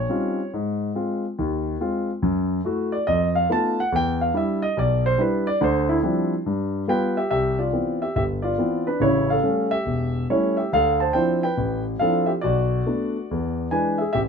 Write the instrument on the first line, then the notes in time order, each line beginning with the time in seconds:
grand piano
Already playing: C#5
0.09 G3 C4 C#4 D#4 F4
0.54 G#2
0.95 G#3 C4 F4
1.39 D#2 D#3
1.81 G#3 C4 F4
2.22 F#2
2.65 A3 E4 F#4
2.92 D5
3.07 F2 D#5
3.35 F5
3.50 A3 B3 D#4 F4 A5
3.80 F#5
3.92 E2 G5
4.21 F5
4.34 G3 D4 E4 E5
4.62 D#5
4.77 B1 D5
5.06 C5
5.18 G3 D4 E4 B4
5.47 D5
5.61 D2 D3 C5
5.89 E4
6.02 F3 G3 C4 D4 E4
6.46 G2
6.87 G3 B3 F4 B4 G5
7.17 G4 E5
7.31 C2 G4 E5
7.59 F4 D5
7.73 E3 B3 C4
8.02 G4 E5
8.16 G1 G4 E5
8.42 F4 D5
8.58 E3 B3 C4
8.87 D4 B4
9.00 A1 C#3 E4 C#5
9.30 A4 F5
9.43 G3 A3 C#4
9.71 G4 E5
9.86 E1
10.30 G3 A3 C#4 E4 C#5
10.57 G4 E5
10.73 D2 A4 F5
11.00 C5 A5
11.13 F3 C4 D4 E4 C5 G5
11.43 B4 G5
11.58 A1
11.99 F3 C4 D4 E4 A4 F5
12.26 G4 E5
12.41 B1 F#4 D5
12.86 A3 B3 D4
13.31 E2
13.71 E3 G#3 D4 B4 G#5
13.98 G#4 E5
14.13 A1 G4 E5